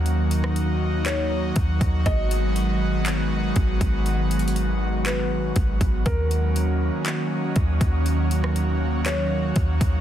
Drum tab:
HH |x-----x-----x-----------x-----------x-----x-----|x-----x-----x-----------x-----------x-----x-----|x-----x-x-x-x-----------x-----------x-----x-----|x-----x-----x-----------x-----------x-----x-----|
CP |------------------------x-----------------------|------------------------x-----------------------|------------------------x-----------------------|------------------------x-----------------------|
SD |---------r--------------------------------------|------------------------------------------------|------------------------------------------------|------------------------------------------------|
BD |------------------------------------o-----o-----|o-----------------------------------o-----o-----|------------------------------------o-----o-----|o-----------------------------------o-----o-----|

HH |x-----x-----x-----------x-----------x-----x-----|
CP |------------------------x-----------------------|
SD |---------r--------------------------------------|
BD |------------------------------------o-----o-----|